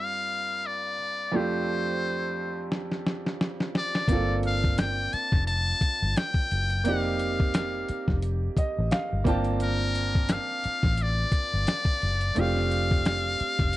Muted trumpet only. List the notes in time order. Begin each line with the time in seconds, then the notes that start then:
Already playing: F5
0.66 D5
1.36 C5
3.78 D5
4.46 F5
4.79 G5
5.13 A5
5.47 A5
6.17 G5
6.85 F5
9.63 A#4
10.32 F5
11.02 D5
12.40 F5